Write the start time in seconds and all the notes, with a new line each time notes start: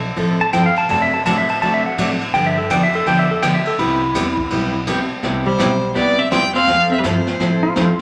Already playing: B1
0.16 A1 F3 C4 E4 A4, kick, ride
0.41 A5
0.53 G1 F3 C4 E4 A4 G5, kick, hi-hat pedal, ride
0.66 F5
0.76 A5, ride
0.89 F#1 C3 F#3 A3 D4 F#4 A5, kick, ride
1.02 E5
1.14 A5
1.25 A1 C3 F#3 A3 D4 F#4 A5, kick, hi-hat pedal, ride
1.38 E5
1.49 A5, ride
1.61 D2 C3 F#3 A3 D4 F#4 A5, kick, ride
1.74 E5
1.86 F#5
1.98 A2 C3 F#3 A3 D4 F#4, kick, hi-hat pedal, ride
2.21 ride
2.34 G2 D3 F3 B3 D4 G4 G5, kick, ride
2.46 E5
2.58 A4
2.70 F2 D3 F3 B3 D4 G4 G5, kick, hi-hat pedal, ride
2.83 E5
2.93 A4, ride
3.06 E2 D3 F3 B3 D4 G4 G5, kick, ride
3.19 E5
3.31 A4
3.42 D2 D3 F3 B3 D4 G4 G5, kick, hi-hat pedal, ride
3.54 E5
3.65 A4, ride
3.78 C2 C3 G3 B3 E4 G4, kick, ride
4.14 E2 C3 G3 B3 E4 G4, kick, hi-hat pedal, ride
4.37 kick
4.50 B1 C3 G3 B3 E4 G4, kick, ride
4.86 D2 C3 G3 B3 E4 G4, kick, hi-hat pedal, ride
5.23 C2 C3 G3 B3 E4 G4, brush sweep, kick, snare
5.46 G3 C5
5.59 B1 C3 G3 B3 E4 G4, kick, snare, hi-hat pedal
5.95 D2 C3 G3 B3 E4 G4 D5, brush sweep, kick, snare
6.19 C4 E5
6.31 E2 C3 G3 B3 C4 E4 G4 G5, kick, snare, hi-hat pedal
6.54 C4 F5, snare
6.67 F2 F3 C4 E4 A4, brush sweep, kick, snare
6.92 C4 E5
6.99 G3 B4
7.04 G2 F3 C4 E4 A4 C5, kick, snare, hi-hat pedal
7.27 snare
7.39 A2 F3 C4 E4 A4, brush sweep, kick, snare
7.63 F4
7.76 F2 F3 C4 E4 F4 A4, kick, snare, hi-hat pedal